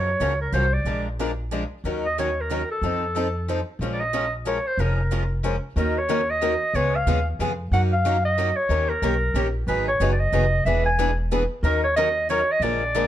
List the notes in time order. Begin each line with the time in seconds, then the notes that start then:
Already playing: F#2 C#5
0.20 C#2 C#3 F3 F#3 A#3 C#4 F4 F#4 A#4
0.41 A#4
0.52 C2 C#3 F3 F#3 A#3 C#4 F4 F#4 A#4 C5
0.73 D5
0.85 A#1 F3 G#3 D4 F4 A#4
1.19 F3 G#3 D4 F4 A#4
1.52 F3 G#3 D4 F4 A#4
1.84 D#2 D#3 F#3 C#4 D#4 A#4
2.06 D#5
2.18 D#3 F#3 C#4 D#4 A#4 C#5
2.41 A#4
2.51 D#3 F#3 C#4 D#4 A#4
2.71 A4
2.82 F2 F3 C4 D#4 A4
3.15 F3 C4 D#4 A4
3.48 F3 C4 D#4 A4
3.79 A#1 F3 G#3 C#4 F4 A#4
3.92 D5
4.00 D#5
4.13 F3 G#3 C#4 F4 A#4
4.46 F3 G#3 C#4 F4 A#4 C#5
4.67 C5
4.77 F1 F3 G#3 C#4 F4 A#4
5.11 F3 G#3 C#4 F4 A#4
5.43 F3 G#3 C#4 F4 A#4
5.76 D#2 D#3 F#3 A#3 C#4 D#4 F#4 A#4
5.98 C#5
6.09 D#3 F#3 A#3 C#4 D#4 F#4 A#4
6.30 D#5
6.41 D#3 F#3 A#3 C#4 D#4 F#4 A#4
6.74 C#2 C#3 G#3 B3 F4 G#4 C#5
6.96 F5
7.06 D#2 C#3 G#3 B3 F4 G#4
7.39 F2 C#3 G#3 B3 F4 G#4
7.72 F#2 F#3 A#3 C#4 D#4 F#4 A#4 F#5
7.93 F5
8.05 F#3 A#3 C#4 D#4 F#4 A#4
8.25 D#5
8.38 F#3 A#3 C#4 D#4 F#4 A#4
8.56 C#5
8.69 D#2 D#3 A#3 C#4 G4 A#4
8.89 A#4
9.02 B1 D#3 A#3 C#4 G4 A#4
9.34 A#1 D#3 A#3 C#4 G4 A#4
9.67 G#1 D#3 F#3 B3 D#4 G#4 B4
9.88 C#5
10.00 F#1 D#3 F#3 B3 D#4 G#4
10.12 D5
10.20 D#5
10.32 F1 D#3 F#3 B3 D#4 G#4
10.65 E1 E3 B3 D4 G#4 B4 E5
10.85 G#5
10.99 E3 B3 D4 G#4 B4
11.32 E3 B3 D4 G#4 B4
11.63 D#2 D#3 F#3 C#4 D#4 A#4
11.84 C#5
11.96 D#3 F#3 C#4 D#4 A#4 D#5
12.30 D#3 F#3 C#4 D#4 A#4 C#5
12.52 D#5
12.60 A#1 D3 F3 G#3 A#3 D4 F4 G#4 A#4 D5
12.95 D3 F3 G#3 A#3 D4 F4 G#4 A#4